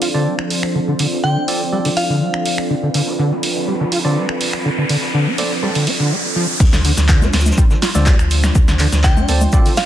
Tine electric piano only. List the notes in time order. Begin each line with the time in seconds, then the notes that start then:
0.14 C4 F4 A4 D5
1.48 C4 F4 A4 D5
1.72 C4 F4 A4 D5
4.05 C4 F4 A4 D5
5.38 C4 F4 A4 D5
5.63 C4 F4 A4 D5
7.95 C4 F4 A4 D5
9.29 C4 F4 A4 D5
9.53 C4 F4 A4 D5